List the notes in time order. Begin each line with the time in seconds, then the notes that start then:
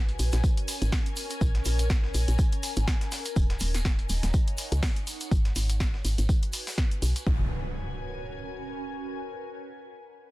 Already playing: A#1 C#4 A#4 G#5
0.09 closed hi-hat
0.19 A#1, open hi-hat, tambourine, shaker
0.32 A#1, snare, closed hi-hat, shaker
0.44 kick, tambourine, shaker
0.57 closed hi-hat
0.68 open hi-hat, tambourine, shaker
0.82 G#1, closed hi-hat, shaker
0.92 kick, snare, open hi-hat, shaker
1.06 closed hi-hat
1.16 open hi-hat, tambourine, shaker
1.30 closed hi-hat, shaker
1.41 A#1, kick, tambourine, shaker
1.55 snare, closed hi-hat
1.65 A#1, open hi-hat, tambourine, shaker
1.79 closed hi-hat, shaker
1.90 kick, snare, tambourine, shaker
2.04 snare
2.14 A#1, open hi-hat, tambourine, shaker
2.28 A#1, closed hi-hat, shaker
2.38 kick, tambourine, shaker
2.52 closed hi-hat
2.63 open hi-hat, tambourine, shaker
2.76 G#1, closed hi-hat, shaker
2.88 kick, snare, tambourine, shaker
3.01 snare, closed hi-hat
3.12 D#4, snare, open hi-hat, tambourine, shaker
3.25 closed hi-hat, shaker
3.36 D#1, kick, tambourine, shaker
3.45 C#5
3.50 snare, closed hi-hat
3.60 D#1, open hi-hat, tambourine, shaker
3.74 snare, closed hi-hat, shaker
3.85 kick, snare, tambourine
3.95 F#5, closed hi-hat
4.09 D#1, open hi-hat, tambourine, shaker
4.23 D#1, snare, closed hi-hat, shaker
4.33 kick, tambourine, shaker
4.48 closed hi-hat
4.58 open hi-hat, tambourine, shaker
4.72 C#2, closed hi-hat, shaker
4.83 kick, snare, open hi-hat, shaker
4.96 closed hi-hat
5.07 open hi-hat, tambourine, shaker
5.20 closed hi-hat, shaker
5.31 G#1 F#4, kick, tambourine, shaker
5.45 snare, closed hi-hat
5.54 G#1 B4 G#5, open hi-hat, tambourine, shaker
5.69 closed hi-hat, shaker
5.80 kick, snare, tambourine, shaker
5.94 snare
6.05 G#1, open hi-hat, tambourine, shaker
6.18 G#1, closed hi-hat, shaker
6.29 kick, tambourine, shaker
6.43 closed hi-hat
6.53 open hi-hat, tambourine, shaker
6.67 snare, open hi-hat, shaker
6.78 kick, snare, tambourine
6.91 closed hi-hat
7.02 B1, open hi-hat, shaker
7.16 closed hi-hat, shaker
7.27 A#1 C#4, kick, impact
7.35 A#4
7.43 G#5